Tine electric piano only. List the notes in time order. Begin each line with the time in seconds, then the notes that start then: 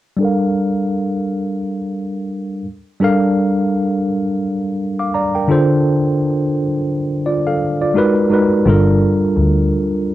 0.16 G3 D4 A4
0.22 A#4 F5
3.00 G3 D4 A4 A#4
3.04 F5
5.00 F5 D6
5.14 D5 A#5
5.35 A#4 G5
5.48 D3 D4 F4 A4
5.52 C5
7.26 F4 D5
7.46 A4 F5
7.82 F4 D5
7.94 G#3 D#4 F#4 A#4
7.98 B4
8.29 G#3 D#4 F#4 A#4 B4
8.65 G3 D4 F4 A4
8.69 A#4